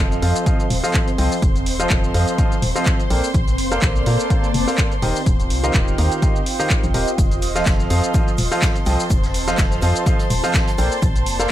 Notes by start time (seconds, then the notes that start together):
Already playing: F3 C4 F4 A4 C5 D#5 F5 C6
0.00 F1
0.12 shaker
0.22 F2 F3 F4 A4 C5 D#5 F5, open hi-hat
0.36 closed hi-hat, shaker
0.46 F3 F4 A4 C5 D#5 F5, kick, closed hi-hat, shaker
0.60 shaker
0.70 D#1, open hi-hat
0.84 F3 F4 A4 C5 D#5 F5, shaker
0.94 kick, clap, closed hi-hat, shaker
1.08 closed hi-hat, shaker
1.18 C2 F3 F4 A4 C5 D#5 G5, open hi-hat
1.32 shaker
1.42 F1, kick, closed hi-hat, shaker
1.56 closed hi-hat, shaker
1.66 D#1, open hi-hat
1.80 F3 F4 A4 C5 D#5 F5, closed hi-hat, shaker
1.90 F1, kick, clap, closed hi-hat, shaker
2.04 shaker
2.14 F2 F3 F4 A4 C5 D#5 F5, open hi-hat
2.28 closed hi-hat, shaker
2.38 F3 F4 A4 C5 D#5 F5, kick, closed hi-hat, shaker
2.52 shaker
2.62 D#1, open hi-hat
2.76 F3 F4 A4 C5 D#5 F5, shaker
2.86 kick, clap, closed hi-hat, shaker
3.00 closed hi-hat, shaker
3.10 A#1 A#3 A4 A#4 C5 D5 G5, open hi-hat
3.24 shaker
3.34 A#1, kick, closed hi-hat, shaker
3.48 closed hi-hat, shaker
3.57 F1 A#3 D5, open hi-hat
3.72 A#3 A4 A#4 C5 D5 F5, closed hi-hat, shaker
3.82 A#1, kick, clap, closed hi-hat, shaker
3.96 A5, shaker
4.06 A#2 A#3 A4 A#4 C5 D5 F5, open hi-hat
4.20 closed hi-hat, shaker
4.30 A#3 A4 A#4 C5 D5 F5, kick, closed hi-hat, shaker
4.44 shaker
4.54 F1, open hi-hat
4.68 A#3 A4 A#4 C5 D5 F5, shaker
4.78 kick, clap, closed hi-hat, shaker
4.92 closed hi-hat, shaker
5.02 D#1 D#3 G4 A#4 C5 D#5 G5, open hi-hat
5.10 F4
5.16 shaker
5.26 D#1 G5, kick, closed hi-hat, shaker
5.40 closed hi-hat, shaker
5.50 C2 D#5, open hi-hat
5.64 D#3 G4 A#4 C5 D#5 F5, closed hi-hat, shaker
5.74 D#1, kick, clap, closed hi-hat, shaker
5.88 shaker
5.98 D#2 D#3 G4 A#4 C5 D#5 F5, open hi-hat
6.12 closed hi-hat, shaker
6.22 D#3 G4 A#4 C5 D#5 F5, kick, closed hi-hat, shaker
6.36 shaker
6.46 open hi-hat
6.60 D#3 G4 A#4 C5 D#5 F5, shaker
6.70 kick, clap, closed hi-hat, shaker
6.84 A#1, closed hi-hat, shaker
6.94 D#1 G4 A#4 C5 D#5 G5, open hi-hat
7.08 shaker
7.18 F1 C5 C6, kick, closed hi-hat, shaker
7.32 closed hi-hat, shaker
7.42 D#1, open hi-hat, shaker
7.55 F3 F4 A4 C5 D#5 F5, snare, closed hi-hat, shaker
7.66 F1, kick, snare, clap, closed hi-hat, shaker
7.80 shaker
7.90 F2 F3 F4 A4 C5 D#5 F5, open hi-hat, shaker
8.04 closed hi-hat, shaker
8.14 F3 F4 A4 C5 D#5 F5, kick, closed hi-hat, shaker
8.19 A5
8.28 shaker
8.38 D#1, open hi-hat, shaker
8.52 F3 F4 A4 C5 D#5 F5, shaker
8.62 kick, snare, clap, closed hi-hat, shaker
8.76 closed hi-hat, shaker
8.86 C2 F3 F4 A4 C5 D#5 G5, snare, open hi-hat, shaker
9.00 shaker
9.10 F1, kick, closed hi-hat, shaker
9.24 snare, closed hi-hat, shaker
9.34 D#1, open hi-hat, shaker
9.47 F3 F4 A4 C5 D#5 F5, snare, closed hi-hat, shaker
9.58 F1, kick, snare, clap, closed hi-hat, shaker
9.72 shaker
9.82 F2 F3 F4 A4 C5 D#5 F5, open hi-hat, shaker
9.96 closed hi-hat, shaker
10.06 F3 F4 A4 C5 D#5 F5, kick, closed hi-hat, shaker
10.19 closed hi-hat, shaker
10.30 D#1, open hi-hat, shaker
10.43 F3 F4 A4 C5 D#5 F5, closed hi-hat, shaker
10.54 kick, snare, clap, closed hi-hat, shaker
10.68 closed hi-hat, shaker
10.78 A#1 A#3 A4 A#4 C5 D5 G5, open hi-hat, shaker
10.92 A#3, shaker
11.02 A#1 D5, kick, closed hi-hat, shaker
11.16 closed hi-hat, shaker
11.26 F1, open hi-hat, shaker
11.40 A#3 A4 A#4 C5 D5 F5, snare, closed hi-hat, shaker